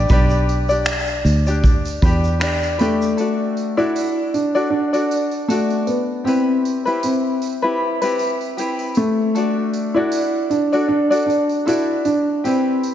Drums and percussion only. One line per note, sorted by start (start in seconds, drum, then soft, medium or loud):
0.09 kick loud
0.09 tambourine soft
0.09 shaker medium
0.30 shaker soft
0.49 tambourine soft
0.69 tambourine soft
0.69 shaker soft
0.85 finger snap loud
0.85 tambourine medium
0.85 shaker medium
1.07 shaker soft
1.25 tambourine soft
1.25 shaker medium
1.47 tambourine soft
1.47 shaker medium
1.64 kick medium
1.64 shaker medium
1.85 tambourine soft
1.85 shaker soft
2.02 kick medium
2.02 tambourine soft
2.02 shaker soft
2.24 shaker soft
2.41 finger snap medium
2.41 tambourine medium
2.41 shaker medium
2.63 tambourine soft
2.63 shaker soft
2.79 tambourine soft
3.02 shaker soft
3.18 tambourine soft
3.57 tambourine soft
3.79 tambourine soft
3.96 tambourine medium
4.34 tambourine soft
4.56 tambourine soft
4.94 tambourine soft
5.11 tambourine soft
5.31 tambourine soft
5.50 tambourine medium
5.70 tambourine soft
5.87 tambourine soft
6.27 tambourine soft
6.65 tambourine soft
6.87 tambourine soft
7.03 tambourine medium
7.42 tambourine soft
8.02 tambourine soft
8.19 tambourine soft
8.41 tambourine soft
8.58 tambourine medium
8.79 tambourine soft
8.95 tambourine soft
9.35 tambourine soft
9.73 tambourine soft
10.12 tambourine medium
10.51 tambourine soft
10.73 tambourine soft
11.12 tambourine soft
11.30 tambourine soft
11.49 tambourine soft
11.68 tambourine medium
12.05 tambourine soft
12.45 tambourine soft
12.83 tambourine soft